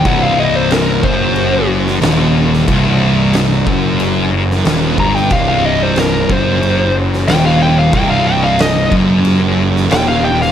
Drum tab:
CC |x---x---x---x---|x---x---x---x---|x---x---x---x---|x---x---x---x---|
SD |----o------oo--o|----o------oo--o|----o------oo---|----o------oo--o|
BD |o-----o---------|o-----o-------o-|o-----o---------|o-----o---------|